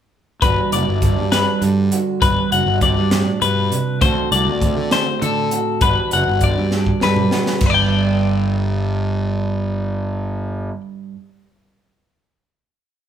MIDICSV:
0, 0, Header, 1, 5, 480
1, 0, Start_track
1, 0, Key_signature, 1, "major"
1, 0, Tempo, 599401
1, 342, Time_signature, 6, 3, 24, 8
1, 5623, Tempo, 606673
1, 10422, End_track
2, 0, Start_track
2, 0, Title_t, "Clean electric guitar"
2, 0, Program_c, 0, 27
2, 337, Note_on_c, 0, 71, 80
2, 579, Note_off_c, 0, 71, 0
2, 583, Note_on_c, 0, 74, 64
2, 1053, Note_off_c, 0, 74, 0
2, 1056, Note_on_c, 0, 71, 70
2, 1297, Note_off_c, 0, 71, 0
2, 1777, Note_on_c, 0, 71, 72
2, 2017, Note_off_c, 0, 71, 0
2, 2021, Note_on_c, 0, 78, 65
2, 2259, Note_off_c, 0, 78, 0
2, 2263, Note_on_c, 0, 74, 64
2, 2734, Note_off_c, 0, 74, 0
2, 2737, Note_on_c, 0, 71, 63
2, 3215, Note_off_c, 0, 71, 0
2, 3219, Note_on_c, 0, 72, 77
2, 3457, Note_off_c, 0, 72, 0
2, 3460, Note_on_c, 0, 74, 65
2, 3939, Note_off_c, 0, 74, 0
2, 3944, Note_on_c, 0, 72, 72
2, 4181, Note_off_c, 0, 72, 0
2, 4184, Note_on_c, 0, 69, 64
2, 4662, Note_off_c, 0, 69, 0
2, 4662, Note_on_c, 0, 71, 78
2, 4901, Note_off_c, 0, 71, 0
2, 4912, Note_on_c, 0, 78, 67
2, 5147, Note_off_c, 0, 78, 0
2, 5154, Note_on_c, 0, 74, 67
2, 5627, Note_off_c, 0, 74, 0
2, 5631, Note_on_c, 0, 71, 65
2, 6105, Note_off_c, 0, 71, 0
2, 6128, Note_on_c, 0, 71, 60
2, 6159, Note_off_c, 0, 71, 0
2, 6159, Note_on_c, 0, 74, 61
2, 6194, Note_on_c, 0, 79, 59
2, 8616, Note_off_c, 0, 74, 0
2, 8619, Note_off_c, 0, 79, 0
2, 10422, End_track
3, 0, Start_track
3, 0, Title_t, "Clean electric guitar"
3, 0, Program_c, 1, 27
3, 334, Note_on_c, 1, 43, 59
3, 339, Note_on_c, 1, 55, 47
3, 345, Note_on_c, 1, 62, 45
3, 351, Note_on_c, 1, 66, 47
3, 356, Note_on_c, 1, 71, 56
3, 581, Note_off_c, 1, 66, 0
3, 585, Note_on_c, 1, 66, 51
3, 818, Note_off_c, 1, 55, 0
3, 821, Note_on_c, 1, 55, 60
3, 825, Note_off_c, 1, 62, 0
3, 828, Note_on_c, 1, 62, 55
3, 1300, Note_on_c, 1, 50, 53
3, 1534, Note_off_c, 1, 66, 0
3, 1537, Note_on_c, 1, 66, 52
3, 1757, Note_off_c, 1, 71, 0
3, 1759, Note_off_c, 1, 43, 0
3, 1768, Note_on_c, 1, 43, 59
3, 1779, Note_off_c, 1, 50, 0
3, 1792, Note_off_c, 1, 66, 0
3, 2011, Note_on_c, 1, 66, 53
3, 2246, Note_off_c, 1, 55, 0
3, 2255, Note_on_c, 1, 55, 56
3, 2256, Note_off_c, 1, 62, 0
3, 2259, Note_on_c, 1, 60, 50
3, 2384, Note_on_c, 1, 62, 42
3, 2385, Note_off_c, 1, 60, 0
3, 2492, Note_off_c, 1, 43, 0
3, 2501, Note_on_c, 1, 45, 60
3, 2727, Note_off_c, 1, 45, 0
3, 2730, Note_on_c, 1, 47, 57
3, 2966, Note_off_c, 1, 47, 0
3, 2970, Note_on_c, 1, 48, 60
3, 3212, Note_on_c, 1, 50, 61
3, 3213, Note_off_c, 1, 48, 0
3, 3214, Note_off_c, 1, 55, 0
3, 3217, Note_on_c, 1, 57, 54
3, 3220, Note_off_c, 1, 62, 0
3, 3223, Note_off_c, 1, 66, 0
3, 3226, Note_on_c, 1, 60, 47
3, 3226, Note_on_c, 1, 66, 50
3, 3233, Note_on_c, 1, 69, 55
3, 3462, Note_off_c, 1, 66, 0
3, 3466, Note_on_c, 1, 66, 55
3, 3684, Note_off_c, 1, 57, 0
3, 3688, Note_off_c, 1, 60, 0
3, 3693, Note_on_c, 1, 57, 62
3, 3698, Note_on_c, 1, 60, 59
3, 4179, Note_on_c, 1, 45, 57
3, 4426, Note_off_c, 1, 66, 0
3, 4429, Note_on_c, 1, 66, 48
3, 4629, Note_off_c, 1, 57, 0
3, 4631, Note_off_c, 1, 45, 0
3, 4638, Note_off_c, 1, 69, 0
3, 4657, Note_off_c, 1, 50, 0
3, 4659, Note_on_c, 1, 43, 55
3, 4660, Note_off_c, 1, 60, 0
3, 4665, Note_on_c, 1, 55, 46
3, 4668, Note_on_c, 1, 62, 50
3, 4675, Note_off_c, 1, 66, 0
3, 4678, Note_on_c, 1, 66, 52
3, 4681, Note_on_c, 1, 71, 55
3, 4894, Note_off_c, 1, 66, 0
3, 4904, Note_on_c, 1, 66, 52
3, 5133, Note_off_c, 1, 55, 0
3, 5136, Note_off_c, 1, 62, 0
3, 5141, Note_on_c, 1, 55, 55
3, 5148, Note_on_c, 1, 62, 47
3, 5621, Note_on_c, 1, 50, 56
3, 5852, Note_off_c, 1, 66, 0
3, 5862, Note_on_c, 1, 66, 49
3, 6072, Note_off_c, 1, 66, 0
3, 6075, Note_off_c, 1, 62, 0
3, 6084, Note_off_c, 1, 71, 0
3, 6089, Note_off_c, 1, 43, 0
3, 6099, Note_on_c, 1, 43, 51
3, 6100, Note_off_c, 1, 50, 0
3, 6105, Note_off_c, 1, 55, 0
3, 6114, Note_on_c, 1, 55, 53
3, 6132, Note_on_c, 1, 62, 48
3, 6164, Note_on_c, 1, 71, 48
3, 8868, Note_off_c, 1, 43, 0
3, 8884, Note_off_c, 1, 55, 0
3, 8901, Note_off_c, 1, 62, 0
3, 8933, Note_off_c, 1, 71, 0
3, 10422, End_track
4, 0, Start_track
4, 0, Title_t, "Fingered electric bass"
4, 0, Program_c, 2, 33
4, 337, Note_on_c, 2, 31, 75
4, 445, Note_off_c, 2, 31, 0
4, 580, Note_on_c, 2, 30, 81
4, 686, Note_off_c, 2, 30, 0
4, 706, Note_on_c, 2, 31, 81
4, 915, Note_off_c, 2, 31, 0
4, 938, Note_on_c, 2, 43, 68
4, 1151, Note_off_c, 2, 43, 0
4, 1293, Note_on_c, 2, 43, 78
4, 1507, Note_off_c, 2, 43, 0
4, 1780, Note_on_c, 2, 31, 82
4, 1885, Note_off_c, 2, 31, 0
4, 2021, Note_on_c, 2, 30, 77
4, 2125, Note_off_c, 2, 30, 0
4, 2131, Note_on_c, 2, 31, 85
4, 2346, Note_off_c, 2, 31, 0
4, 2378, Note_on_c, 2, 43, 74
4, 2590, Note_off_c, 2, 43, 0
4, 2737, Note_on_c, 2, 43, 75
4, 2949, Note_off_c, 2, 43, 0
4, 3218, Note_on_c, 2, 38, 78
4, 3323, Note_off_c, 2, 38, 0
4, 3455, Note_on_c, 2, 36, 86
4, 3562, Note_off_c, 2, 36, 0
4, 3578, Note_on_c, 2, 38, 84
4, 3790, Note_off_c, 2, 38, 0
4, 3817, Note_on_c, 2, 50, 73
4, 4030, Note_off_c, 2, 50, 0
4, 4180, Note_on_c, 2, 50, 81
4, 4392, Note_off_c, 2, 50, 0
4, 4655, Note_on_c, 2, 31, 82
4, 4763, Note_off_c, 2, 31, 0
4, 4910, Note_on_c, 2, 30, 82
4, 5012, Note_off_c, 2, 30, 0
4, 5025, Note_on_c, 2, 31, 85
4, 5236, Note_off_c, 2, 31, 0
4, 5265, Note_on_c, 2, 43, 68
4, 5477, Note_off_c, 2, 43, 0
4, 5626, Note_on_c, 2, 43, 72
4, 5836, Note_off_c, 2, 43, 0
4, 6097, Note_on_c, 2, 31, 77
4, 8522, Note_off_c, 2, 31, 0
4, 10422, End_track
5, 0, Start_track
5, 0, Title_t, "Drums"
5, 337, Note_on_c, 9, 42, 72
5, 338, Note_on_c, 9, 36, 90
5, 417, Note_off_c, 9, 42, 0
5, 418, Note_off_c, 9, 36, 0
5, 579, Note_on_c, 9, 42, 53
5, 659, Note_off_c, 9, 42, 0
5, 816, Note_on_c, 9, 42, 48
5, 817, Note_on_c, 9, 36, 66
5, 896, Note_off_c, 9, 42, 0
5, 897, Note_off_c, 9, 36, 0
5, 1057, Note_on_c, 9, 38, 88
5, 1057, Note_on_c, 9, 42, 70
5, 1137, Note_off_c, 9, 38, 0
5, 1137, Note_off_c, 9, 42, 0
5, 1296, Note_on_c, 9, 42, 54
5, 1377, Note_off_c, 9, 42, 0
5, 1535, Note_on_c, 9, 42, 60
5, 1615, Note_off_c, 9, 42, 0
5, 1776, Note_on_c, 9, 36, 98
5, 1777, Note_on_c, 9, 42, 77
5, 1856, Note_off_c, 9, 36, 0
5, 1858, Note_off_c, 9, 42, 0
5, 2018, Note_on_c, 9, 42, 57
5, 2098, Note_off_c, 9, 42, 0
5, 2252, Note_on_c, 9, 42, 49
5, 2254, Note_on_c, 9, 36, 62
5, 2332, Note_off_c, 9, 42, 0
5, 2334, Note_off_c, 9, 36, 0
5, 2493, Note_on_c, 9, 38, 93
5, 2493, Note_on_c, 9, 42, 68
5, 2573, Note_off_c, 9, 38, 0
5, 2573, Note_off_c, 9, 42, 0
5, 2736, Note_on_c, 9, 42, 54
5, 2817, Note_off_c, 9, 42, 0
5, 2978, Note_on_c, 9, 42, 53
5, 3058, Note_off_c, 9, 42, 0
5, 3215, Note_on_c, 9, 36, 94
5, 3215, Note_on_c, 9, 42, 71
5, 3295, Note_off_c, 9, 42, 0
5, 3296, Note_off_c, 9, 36, 0
5, 3459, Note_on_c, 9, 42, 52
5, 3539, Note_off_c, 9, 42, 0
5, 3696, Note_on_c, 9, 36, 61
5, 3698, Note_on_c, 9, 42, 47
5, 3776, Note_off_c, 9, 36, 0
5, 3779, Note_off_c, 9, 42, 0
5, 3935, Note_on_c, 9, 38, 91
5, 3935, Note_on_c, 9, 42, 67
5, 4015, Note_off_c, 9, 38, 0
5, 4015, Note_off_c, 9, 42, 0
5, 4180, Note_on_c, 9, 42, 53
5, 4260, Note_off_c, 9, 42, 0
5, 4415, Note_on_c, 9, 42, 54
5, 4495, Note_off_c, 9, 42, 0
5, 4652, Note_on_c, 9, 42, 77
5, 4656, Note_on_c, 9, 36, 94
5, 4732, Note_off_c, 9, 42, 0
5, 4736, Note_off_c, 9, 36, 0
5, 4894, Note_on_c, 9, 42, 56
5, 4974, Note_off_c, 9, 42, 0
5, 5130, Note_on_c, 9, 42, 52
5, 5135, Note_on_c, 9, 36, 58
5, 5210, Note_off_c, 9, 42, 0
5, 5215, Note_off_c, 9, 36, 0
5, 5373, Note_on_c, 9, 38, 46
5, 5453, Note_off_c, 9, 38, 0
5, 5498, Note_on_c, 9, 36, 51
5, 5578, Note_off_c, 9, 36, 0
5, 5616, Note_on_c, 9, 38, 65
5, 5695, Note_off_c, 9, 38, 0
5, 5736, Note_on_c, 9, 45, 61
5, 5815, Note_off_c, 9, 45, 0
5, 5854, Note_on_c, 9, 38, 73
5, 5933, Note_off_c, 9, 38, 0
5, 5973, Note_on_c, 9, 38, 70
5, 6052, Note_off_c, 9, 38, 0
5, 6085, Note_on_c, 9, 49, 79
5, 6092, Note_on_c, 9, 36, 91
5, 6164, Note_off_c, 9, 49, 0
5, 6171, Note_off_c, 9, 36, 0
5, 10422, End_track
0, 0, End_of_file